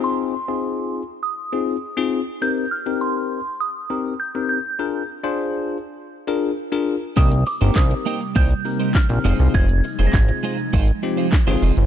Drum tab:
HH |----------------|----------------|----------------|xxoxxxoxxxoxxxox|
SH |----------------|----------------|----------------|xxxxxxxxxxxxxxxx|
CP |----------------|----------------|----------------|----x-------x---|
SD |----------------|----------------|----------------|----o-------o---|
BD |----------------|----------------|----------------|o---o---o---o---|

HH |xxoxxxoxxxoxxxox|
SH |xxxxxxxxxxxxxxxx|
CP |----x-------x---|
SD |----o-------o---|
BD |o---o---o---o---|